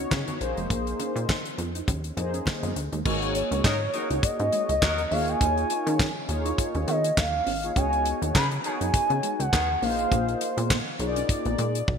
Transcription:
Already playing: B3 D#4 F#4 C#5
0.11 C#3, kick, snare, clap, high conga
0.28 B3, closed hi-hat, high conga
0.40 A#1 A#3 D#4 G#4 C5, muted clean electric guitar stroke, closed hi-hat
0.57 F1 G#3, closed hi-hat
0.70 A#1 A#3, kick, closed hi-hat
0.87 closed hi-hat
0.99 C#4, closed hi-hat, muted conga
1.16 A#2, closed hi-hat
1.29 muted clean electric guitar stroke, kick, snare, clap, high conga
1.45 closed hi-hat
1.58 F2 B3, closed hi-hat
1.75 D#4, closed hi-hat
1.88 D#2 C#4, kick, closed hi-hat, muted conga, low conga
2.04 closed hi-hat
2.17 F2 A#3 D#4 G#4 C5, muted clean electric guitar stroke, closed hi-hat, muted conga, low conga
2.34 C#4, closed hi-hat
2.46 kick, snare, clap, high conga
2.63 F#2 B3, closed hi-hat, high conga
2.76 D2, closed hi-hat
2.92 D#2 G#3, closed hi-hat
3.05 G#1 G#3 A#3 D#4 F#4 G#4 C#5, kick, crash
3.22 closed hi-hat
3.35 C#5, muted clean electric guitar stroke, closed hi-hat
3.51 C#2 C#4, closed hi-hat
3.64 G#2 F#3 C#4 D#4 A#4, kick, snare, clap
3.81 muted clean electric guitar stroke
3.93 F#3 A#3 D#4 F#4 G#4 A#4 C#5, closed hi-hat
4.10 C#2 D#4, closed hi-hat
4.23 G#2 D#5, kick, closed hi-hat
4.39 G#2 C#4, closed hi-hat
4.52 G#3, closed hi-hat
4.69 C#2, closed hi-hat
4.82 D#2 F#3 D#4 A#4, kick, snare, clap
4.98 closed hi-hat
5.11 D#2 A#3 D#4 F4 G#4 C#5 F5, open hi-hat
5.28 G#5, closed hi-hat
5.41 D#2 D#4, kick, closed hi-hat
5.57 closed hi-hat
5.70 muted clean electric guitar stroke, closed hi-hat
5.87 D#3 C#4, closed hi-hat
5.99 C#4, kick, snare, clap
6.16 muted clean electric guitar stroke
6.28 D#2 A#3 D#4 F4 G#4 C#5, closed hi-hat
6.46 D#4, closed hi-hat
6.58 kick, closed hi-hat
6.75 D#2 C#4, closed hi-hat
6.87 D#3 B3 D#5, closed hi-hat
7.04 closed hi-hat
7.17 D#2 F5, kick, snare, clap
7.46 G#1 C#4, open hi-hat
7.63 A#3 D#4 F4 G#4 C#5, closed hi-hat
7.76 C#2 B3 C#4 D#4 F#4 G#4 C#5 G#5, kick, closed hi-hat
7.93 closed hi-hat
8.05 muted clean electric guitar stroke, closed hi-hat
8.22 D#2 D#4, closed hi-hat
8.35 C#3 D#3 B3 C#4 G#4 B5, kick, snare, clap
8.51 muted clean electric guitar stroke, closed hi-hat
8.64 D#3 B3 D#4 F#4 G#4 C#5 G#5, closed hi-hat
8.81 F#2 D#4, closed hi-hat
8.93 C#3, muted clean electric guitar stroke, kick, closed hi-hat
9.10 C#3 B3, closed hi-hat
9.23 G#3, closed hi-hat
9.40 C#2 F#5, closed hi-hat
9.52 D#2 D#3 B3 G#4, kick, snare, clap
9.82 A#1 A#3 D#4 F4 G#4 C5 F5, open hi-hat
9.99 closed hi-hat
10.12 A#1 A#3, kick, closed hi-hat
10.28 closed hi-hat
10.41 muted clean electric guitar stroke, closed hi-hat
10.57 A#2 B3, closed hi-hat
10.70 B3, kick, snare, clap
10.87 muted clean electric guitar stroke
10.99 B1 A#3 D#4 F4 G#4 C#5, closed hi-hat
11.07 D5
11.16 C#4, closed hi-hat
11.29 muted clean electric guitar stroke, kick, closed hi-hat
11.45 A#1 B3, closed hi-hat
11.58 A#2 G#3, closed hi-hat
11.75 closed hi-hat
11.88 B1, kick, high tom

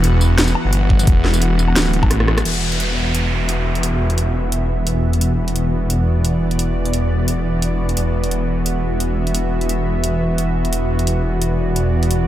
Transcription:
Already playing: E1 E3 B3 F#4 F#5
0.04 closed hi-hat
0.21 tambourine
0.38 snare, closed hi-hat
0.48 tambourine
0.55 low woodblock
0.65 G1
0.73 closed hi-hat
0.90 kick
0.99 closed hi-hat, tambourine
1.07 E1, kick, closed hi-hat
1.25 snare
1.34 closed hi-hat, tambourine
1.42 closed hi-hat
1.59 tambourine
1.68 low woodblock
1.76 D1, snare, closed hi-hat, tambourine
1.93 closed hi-hat
2.03 A1, kick, low woodblock
2.11 cross-stick, closed hi-hat
2.20 cross-stick
2.28 cross-stick
2.38 cross-stick, closed hi-hat, tambourine
2.45 E1 E3 B3 F#4 E5, closed hi-hat, crash, downlifter
2.72 closed hi-hat
2.80 closed hi-hat
3.15 closed hi-hat
3.49 closed hi-hat
3.75 closed hi-hat
3.83 closed hi-hat
4.10 closed hi-hat
4.18 closed hi-hat
4.52 closed hi-hat
4.87 closed hi-hat
5.13 closed hi-hat
5.21 D5, closed hi-hat
5.48 closed hi-hat
5.56 closed hi-hat
5.90 closed hi-hat
6.25 closed hi-hat
6.51 closed hi-hat
6.59 closed hi-hat
6.86 closed hi-hat
6.94 closed hi-hat
7.28 closed hi-hat
7.62 closed hi-hat
7.89 closed hi-hat
7.97 E1 E5, closed hi-hat
8.24 closed hi-hat
8.31 closed hi-hat
8.66 closed hi-hat
9.00 closed hi-hat
9.27 closed hi-hat
9.35 closed hi-hat
9.61 closed hi-hat
9.69 closed hi-hat
10.04 closed hi-hat
10.38 closed hi-hat
10.65 closed hi-hat
10.73 D5, closed hi-hat
10.99 closed hi-hat
11.07 closed hi-hat
11.42 closed hi-hat
11.76 closed hi-hat
12.03 closed hi-hat
12.11 closed hi-hat

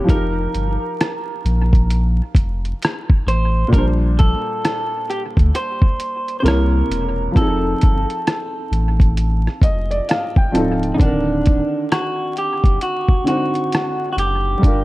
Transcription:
Already playing: C3 A#3 G4
0.04 F3 D#4
0.09 F1 G4 A#4, kick, closed hi-hat
0.14 A#4
0.55 G1, closed hi-hat
1.01 cross-stick, closed hi-hat
1.45 A#1, closed hi-hat
1.73 kick, closed hi-hat
1.90 closed hi-hat
2.35 F1, kick, closed hi-hat
2.65 closed hi-hat
2.82 cross-stick, closed hi-hat
3.10 kick
3.27 A1 C5, closed hi-hat
3.68 A#2 G3
3.73 A#1 D4 A#4, kick, closed hi-hat
3.78 C5
4.19 A4, kick, closed hi-hat
4.65 cross-stick, closed hi-hat
5.10 G4, closed hi-hat
5.37 D2, kick, closed hi-hat
5.55 C5, closed hi-hat
5.82 kick
6.00 closed hi-hat
6.28 closed hi-hat
6.40 C3 A#3 C5
6.44 C2 E4 A#4 C#5, cross-stick, closed hi-hat
6.90 E1, closed hi-hat
7.31 F3 C4
7.36 F1 D#4 A4, kick, closed hi-hat
7.41 G#4
7.48 A4
7.81 G1, kick, closed hi-hat
8.10 closed hi-hat
8.27 cross-stick, closed hi-hat
8.72 A1, closed hi-hat
9.00 kick, closed hi-hat
9.17 closed hi-hat
9.47 cross-stick
9.61 F1 D#5, kick, closed hi-hat
9.91 D5, closed hi-hat
10.09 F5, cross-stick, closed hi-hat
10.36 G5, kick
10.51 C#1 F3 C4 D#4 A5, closed hi-hat
10.57 A4
10.83 closed hi-hat
10.94 D3 C4 D#4
11.00 D1 D#3 D4 F#5, kick, closed hi-hat
11.05 A#4
11.46 kick, closed hi-hat
11.92 F#4, cross-stick, closed hi-hat
12.37 G4, closed hi-hat
12.64 F#1, kick, closed hi-hat
12.81 F#4, closed hi-hat
13.08 kick
13.24 D3 C4 D#4 F#5, closed hi-hat
13.28 F#4 C5
13.55 closed hi-hat
13.72 cross-stick, closed hi-hat
14.13 F#4
14.17 F#1 G4, closed hi-hat
14.58 G3 D4
14.63 G1 F4, kick, closed hi-hat
14.68 A#4

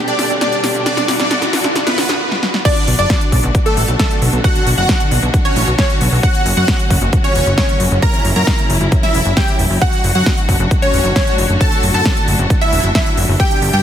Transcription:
Already playing: B2 D3 G3 D4 G4, riser
0.08 D4 D5, closed hi-hat
0.19 D1, snare, open hi-hat
0.30 G1, closed hi-hat
0.41 D4 D5, snare, closed hi-hat
0.52 closed hi-hat
0.64 G1, snare, open hi-hat
0.75 G1, closed hi-hat
0.86 D4 F#4 D5, snare, closed hi-hat
0.97 snare, closed hi-hat
1.08 G1, snare, open hi-hat
1.20 G2 D4 D5, snare, closed hi-hat
1.31 snare, closed hi-hat
1.42 snare, closed hi-hat
1.53 G1, snare, open hi-hat
1.64 G1, snare, closed hi-hat
1.76 snare, closed hi-hat
1.87 B3 B4, snare, closed hi-hat
1.98 G1, snare, open hi-hat
2.09 G2, snare, closed hi-hat
2.32 snare
2.43 snare
2.54 snare
2.65 B2 D3 F#3 D4 F#4 D5, kick, closed hi-hat, crash
2.76 closed hi-hat
2.88 B1, open hi-hat
2.99 F#1 D4 D5, closed hi-hat
3.10 kick, snare, closed hi-hat
3.21 closed hi-hat
3.32 B1, kick, open hi-hat
3.44 B1, closed hi-hat
3.55 kick, closed hi-hat
3.66 A3 A4, closed hi-hat
3.77 A1, open hi-hat
3.88 B1, closed hi-hat
3.99 A3 A4, kick, snare, closed hi-hat
4.11 closed hi-hat
4.22 B1, open hi-hat
4.33 B1, closed hi-hat
4.44 F#4 F#5, kick, closed hi-hat
4.55 closed hi-hat
4.67 B1, open hi-hat
4.78 F#1 F#4 F#5, closed hi-hat
4.89 kick, snare, closed hi-hat
5.00 closed hi-hat
5.11 B1, open hi-hat
5.23 B1, closed hi-hat
5.34 kick, closed hi-hat
5.45 C#4 C#5, closed hi-hat
5.56 A1, open hi-hat
5.67 B1, closed hi-hat
5.79 C#4 C#5, kick, snare, closed hi-hat
5.90 closed hi-hat
6.01 B1, open hi-hat
6.12 B1, open hi-hat
6.23 A#2 C#3 C#4 F#4 F#5, kick, closed hi-hat
6.35 closed hi-hat
6.46 F#1, open hi-hat
6.57 F#2 F#4 F#5, closed hi-hat
6.68 kick, snare, closed hi-hat
6.79 closed hi-hat
6.90 F#1, kick, open hi-hat
7.02 F#1, closed hi-hat
7.13 kick, closed hi-hat
7.24 C#4 C#5, closed hi-hat
7.35 E1, open hi-hat
7.46 F#1, closed hi-hat
7.58 C#4 C#5, kick, snare, closed hi-hat
7.69 closed hi-hat
7.80 F#1, open hi-hat
7.91 F#1, closed hi-hat
8.02 E4 A#4 A#5, kick, closed hi-hat
8.14 closed hi-hat
8.25 F#1, open hi-hat
8.36 F#2 A#4 A#5, closed hi-hat
8.47 kick, snare, closed hi-hat
8.58 closed hi-hat
8.70 F#1, open hi-hat
8.81 F#1, closed hi-hat
8.92 kick, closed hi-hat
9.03 E4 E5, snare, closed hi-hat
9.14 E1, open hi-hat
9.26 F#1, closed hi-hat
9.37 G4 G5, kick, snare, closed hi-hat
9.48 closed hi-hat
9.59 E1, open hi-hat
9.70 F#1, open hi-hat
9.82 A2 D3 D4 F#4 F#5, kick, closed hi-hat
9.93 closed hi-hat
10.04 F#1, open hi-hat
10.15 F#2 F#4 F#5, closed hi-hat
10.26 kick, snare, closed hi-hat
10.38 closed hi-hat
10.49 F#1, kick, open hi-hat
10.60 F#1, closed hi-hat
10.71 kick, closed hi-hat
10.82 C#4 C#5, closed hi-hat
10.94 E1, open hi-hat
11.05 F#1, closed hi-hat
11.16 C#4 C#5, kick, snare, closed hi-hat
11.27 closed hi-hat
11.38 F#1, open hi-hat
11.49 F#1, closed hi-hat
11.61 A4 A5, kick, closed hi-hat
11.72 closed hi-hat
11.83 F#1, open hi-hat
11.94 F#2 A4 A5, closed hi-hat
12.05 kick, snare, closed hi-hat
12.17 closed hi-hat
12.28 F#1, open hi-hat
12.39 F#1, closed hi-hat
12.50 kick, closed hi-hat
12.61 E4 E5, closed hi-hat
12.73 E1, open hi-hat
12.84 F#1, closed hi-hat
12.95 E4 E5, kick, snare, closed hi-hat
13.06 closed hi-hat
13.17 F#1, open hi-hat
13.29 F#1, open hi-hat
13.40 B2 G3 G4 G5, kick, closed hi-hat
13.51 closed hi-hat
13.62 G1, open hi-hat
13.73 G2 G4 G5, closed hi-hat

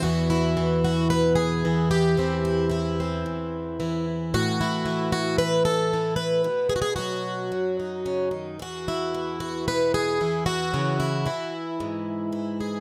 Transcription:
0.03 E2 E3 B3 E4 F#4
0.30 E4
0.57 E3
0.85 F#4
1.10 B2 B4
1.35 G#4
1.65 E3
1.91 G4
2.17 E2 E3 C4 E4
2.45 E4
2.70 E3 E4
3.00 C4
3.26 E2
3.80 E3
4.34 A2 F#4
4.61 E4
4.86 E3
5.12 F#4
5.38 E3 B4
5.65 A4
5.93 E3
6.16 B4
6.44 B2
6.69 G#4
6.76 F#4
6.82 G#4
6.96 F#3 F#4
7.52 F#2
7.80 D#4
8.06 C#3
8.31 D#3
8.59 E2 F#4
8.88 E4
9.14 E3
9.40 F#4
9.68 B2 B4
9.94 G#4
10.21 E3
10.46 F#4
10.74 C#3
11.00 E4
11.26 E3 E4
11.80 G#2
12.32 E3
12.61 G#4

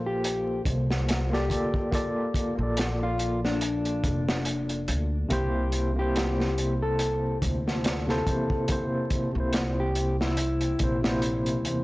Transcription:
Already playing: A#1 A#3 F4 A4 C5
0.07 G4
0.24 closed hi-hat
0.65 C2, kick, closed hi-hat
0.90 snare
1.09 snare, closed hi-hat
1.30 A#3 F4 G4 A4, snare
1.34 D5
1.48 D2 A#3 F4 A4 D5, kick, closed hi-hat
1.74 kick
1.92 A#3 F4 A4 D5, kick, closed hi-hat
2.34 kick, closed hi-hat
2.55 A#1 A#3 F4
2.60 A4 D5
2.77 snare, closed hi-hat
3.03 F4
3.19 closed hi-hat
3.45 D4, snare
3.61 closed hi-hat
3.85 closed hi-hat
4.04 F1, kick, closed hi-hat
4.29 snare
4.45 closed hi-hat
4.69 closed hi-hat
4.88 D2, closed hi-hat
5.29 C2 C3 A#3 E4 G4, kick, closed hi-hat
5.33 C5
5.72 closed hi-hat
5.93 C3 A#3
5.99 E4 G4 C5
6.16 snare, closed hi-hat
6.40 snare
6.58 closed hi-hat
6.82 A4
6.99 closed hi-hat
7.42 D2, kick, closed hi-hat
7.68 snare
7.84 snare, closed hi-hat
8.07 C3 A#3 E4 A4, snare
8.11 C5
8.25 E2 C3 A#3 E4 C5, kick, closed hi-hat
8.50 kick
8.68 C3 A#3 E4, kick, closed hi-hat
8.72 C5
9.10 kick, closed hi-hat
9.32 C2 C3 A#3
9.37 E4 C5
9.53 snare, closed hi-hat
9.80 G4
9.95 closed hi-hat
10.21 E4, snare
10.37 closed hi-hat
10.61 closed hi-hat
10.79 A#1 C3 A#3 E4, kick, closed hi-hat
10.83 C5
11.01 C3 A#3, snare
11.06 E4 C5
11.22 closed hi-hat
11.46 closed hi-hat
11.65 E2, closed hi-hat

